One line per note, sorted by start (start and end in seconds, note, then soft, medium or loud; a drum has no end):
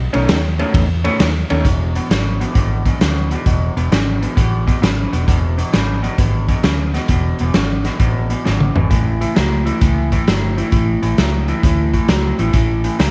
0.13 0.25 B1 medium
0.13 0.38 B2 medium
0.13 0.38 D#3 medium
0.13 0.38 A3 loud
0.13 0.38 C#4 loud
0.13 ride medium
0.29 0.62 D#2 medium
0.29 snare loud
0.29 ride medium
0.59 0.84 B2 medium
0.59 0.84 D#3 medium
0.59 0.84 A3 medium
0.59 0.84 C#4 medium
0.59 ride medium
0.74 1.07 E2 loud
0.74 kick loud
0.74 ride medium
1.04 1.29 B2 medium
1.04 1.29 D#3 medium
1.04 1.29 A3 loud
1.04 1.29 C#4 loud
1.04 ride medium
1.20 1.42 D#2 loud
1.20 snare loud
1.20 ride medium
1.50 1.61 D#2 medium
1.50 1.64 B2 medium
1.50 1.66 D#3 medium
1.50 1.65 A3 medium
1.50 1.65 C#4 medium
1.50 ride medium
1.65 1.98 E1 medium
1.65 1.92 E2 medium
1.65 1.92 B2 medium
1.65 kick loud
1.65 closed hi-hat medium
1.95 2.09 E2 medium
1.95 2.09 B2 medium
1.95 closed hi-hat medium
2.10 2.43 G#1 medium
2.10 2.38 E2 medium
2.10 2.38 C#3 medium
2.10 snare loud
2.10 closed hi-hat medium
2.40 2.53 E2 medium
2.40 2.54 B2 medium
2.40 closed hi-hat medium
2.55 2.88 G#1 medium
2.55 2.82 E2 medium
2.55 2.83 B2 medium
2.55 kick loud
2.55 closed hi-hat medium
2.86 3.00 E2 medium
2.86 3.00 B2 medium
2.86 kick medium
2.86 closed hi-hat medium
3.01 3.34 D2 medium
3.01 3.28 E2 medium
3.01 3.29 C#3 medium
3.01 snare loud
3.01 closed hi-hat medium
3.31 3.45 E2 medium
3.31 3.45 B2 medium
3.31 closed hi-hat medium
3.46 3.68 E1 medium
3.46 3.74 E2 medium
3.46 3.74 B2 medium
3.46 kick loud
3.46 closed hi-hat medium
3.77 3.88 E1 medium
3.77 3.90 E2 medium
3.77 3.90 B2 medium
3.77 closed hi-hat medium
3.91 4.25 G#1 medium
3.91 4.19 E2 medium
3.91 4.19 C#3 medium
3.91 snare loud
3.91 closed hi-hat medium
4.21 4.35 E2 medium
4.21 4.35 B2 medium
4.21 closed hi-hat medium
4.36 4.70 A1 medium
4.36 4.64 E2 medium
4.36 4.64 B2 medium
4.36 kick loud
4.36 closed hi-hat medium
4.67 4.81 E2 medium
4.67 4.81 B2 medium
4.67 kick medium
4.67 closed hi-hat medium
4.82 5.05 G#1 medium
4.82 5.10 E2 medium
4.82 5.10 C#3 medium
4.82 snare loud
4.82 closed hi-hat medium
5.12 5.24 E1 medium
5.12 5.26 E2 medium
5.12 5.27 B2 medium
5.12 closed hi-hat medium
5.28 5.61 E1 medium
5.28 5.55 E2 medium
5.28 5.56 B2 medium
5.28 kick loud
5.28 closed hi-hat medium
5.58 5.71 E2 medium
5.58 5.72 B2 medium
5.58 closed hi-hat medium
5.73 6.07 G#1 medium
5.73 6.01 E2 medium
5.73 6.01 C#3 medium
5.73 snare loud
5.73 closed hi-hat medium
6.02 6.17 E2 medium
6.02 6.17 B2 medium
6.02 closed hi-hat medium
6.18 6.52 G#1 medium
6.18 6.46 E2 medium
6.18 6.46 B2 medium
6.18 kick loud
6.18 closed hi-hat medium
6.48 6.62 E2 medium
6.48 6.63 B2 medium
6.48 kick medium
6.48 closed hi-hat medium
6.63 6.97 D2 medium
6.63 6.91 E2 medium
6.63 6.91 C#3 medium
6.63 snare loud
6.63 closed hi-hat medium
6.94 7.08 E2 medium
6.94 7.08 B2 medium
6.94 snare soft
6.94 closed hi-hat medium
7.08 7.31 E1 medium
7.08 7.37 E2 medium
7.08 7.37 B2 medium
7.08 kick loud
7.08 closed hi-hat medium
7.39 7.51 E1 medium
7.39 7.53 E2 medium
7.39 7.54 B2 medium
7.39 closed hi-hat medium
7.54 7.88 G#1 medium
7.54 7.82 E2 medium
7.54 7.83 C#3 medium
7.54 snare loud
7.54 closed hi-hat medium
7.85 7.98 E2 medium
7.85 7.98 B2 medium
7.85 snare soft
7.85 closed hi-hat medium
7.99 8.33 A1 medium
7.99 8.27 E2 medium
7.99 8.28 B2 medium
7.99 kick loud
7.99 closed hi-hat medium
8.30 8.43 E2 medium
8.30 8.44 B2 medium
8.30 closed hi-hat medium
8.45 8.69 G#1 medium
8.45 8.73 E2 medium
8.45 8.73 C#3 medium
8.45 snare medium
8.60 mid tom medium
8.75 8.88 G#1 medium
8.75 8.89 E2 medium
8.75 8.90 B2 medium
8.75 floor tom medium
8.90 9.24 A1 medium
8.90 9.18 A2 medium
8.90 9.19 E3 medium
8.90 kick medium
8.90 closed hi-hat medium
9.21 9.34 A2 medium
9.21 9.35 E3 medium
9.21 closed hi-hat medium
9.35 9.70 C#2 medium
9.35 9.63 A2 medium
9.35 9.64 F#3 medium
9.35 snare loud
9.35 closed hi-hat medium
9.66 9.80 A2 medium
9.66 9.80 E3 medium
9.66 closed hi-hat medium
9.81 10.15 C#2 medium
9.81 10.09 A2 medium
9.81 10.09 E3 medium
9.81 kick loud
9.81 closed hi-hat medium
10.12 10.26 A2 medium
10.12 10.26 E3 medium
10.12 kick medium
10.12 closed hi-hat medium
10.27 10.60 G1 medium
10.27 10.55 A2 medium
10.27 10.55 F#3 medium
10.27 snare loud
10.27 closed hi-hat medium
10.57 10.70 A2 medium
10.57 10.71 E3 medium
10.57 closed hi-hat medium
10.72 10.95 A1 medium
10.72 11.00 A2 medium
10.72 11.00 E3 medium
10.72 kick loud
10.72 closed hi-hat medium
11.02 11.14 A1 medium
11.02 11.16 A2 medium
11.02 11.17 E3 medium
11.02 closed hi-hat medium
11.18 11.51 C#2 medium
11.18 11.46 A2 medium
11.18 11.46 F#3 medium
11.18 snare loud
11.18 closed hi-hat medium
11.48 11.62 A2 medium
11.48 11.62 E3 medium
11.48 closed hi-hat soft
11.63 11.97 D2 medium
11.63 11.91 A2 medium
11.63 11.91 E3 medium
11.63 kick loud
11.63 closed hi-hat medium
11.93 12.07 A2 medium
11.93 12.08 E3 medium
11.93 kick medium
11.93 closed hi-hat medium
12.08 12.31 C#2 medium
12.08 12.36 A2 medium
12.08 12.36 F#3 medium
12.08 snare loud
12.08 closed hi-hat medium
12.39 12.50 A1 medium
12.39 12.52 A2 medium
12.39 12.52 E3 medium
12.39 closed hi-hat medium
12.53 12.87 A1 medium
12.53 12.81 A2 medium
12.53 12.81 E3 medium
12.53 kick loud
12.53 closed hi-hat medium
12.84 12.98 A2 medium
12.84 12.98 E3 medium
12.84 closed hi-hat medium
12.99 13.11 C#2 medium
12.99 13.11 A2 medium
12.99 13.11 F#3 medium
12.99 snare loud
12.99 closed hi-hat medium